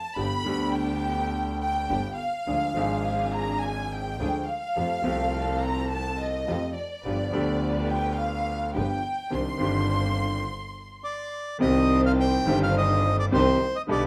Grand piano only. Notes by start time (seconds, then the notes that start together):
0.16 G1 G2 D3 G3 B3 G4
0.45 D2 D3 G3 B3 G4
1.89 G1 G2 D3 G3 B3 G4
2.47 D2 D3 F3 G#3 D4 G#4
2.74 G#1 G#2 F3 G#3 D4
2.78 G#4
4.19 D2 D3 F3 G#3 D4 G#4
4.76 F2 F3 A3 C4 G4
5.02 C2 C3 F3 A3 C4 G4
6.48 F2 F3 A3 C4 G4
7.05 G1 G2 F3 B3 D4 G4
7.31 D2 D3 F3 B3 D4
7.35 G4
8.74 G1 G2 F3 B3 D4 G4
9.30 C2 C3 D#3 C4 D4 G4
9.58 G1 G2 D#3 C4 D4
9.62 G4
11.59 C2 C3 D#3 G3 C4
11.63 G4
12.45 G1 G2 D#3 G3 C4 G4
13.32 C2 C3 D#3 G3 C4 G4
13.87 B1 B2 D3 G3 B3
13.91 G4